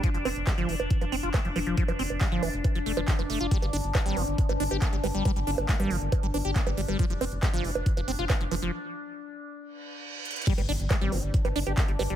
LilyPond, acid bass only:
\new Staff \with { instrumentName = "Acid bass" } { \clef bass \time 4/4 \key g \phrygian \tempo 4 = 138 f16 f16 c'16 r16 g16 f16 e16 r8 f16 c'16 f'16 a16 f16 f16 f16 | f16 f16 c'16 r16 g16 f16 e16 r8 f16 a16 f16 f16 f16 a16 f'16 | g16 g16 d'16 r16 aes16 g16 f16 r8 g16 d'16 g'16 bes16 g16 g16 g16 | g16 g16 d'16 r16 aes16 g16 f16 r8 g16 d'16 g'16 bes16 g16 g16 g16 |
f16 f16 c'16 r16 g16 f16 e16 r8 f16 c'16 f'16 a16 f16 f16 f16 | r1 | g16 g16 d'16 r16 aes16 g16 f16 r8 g16 d'16 g'16 bes16 g16 g16 g16 | }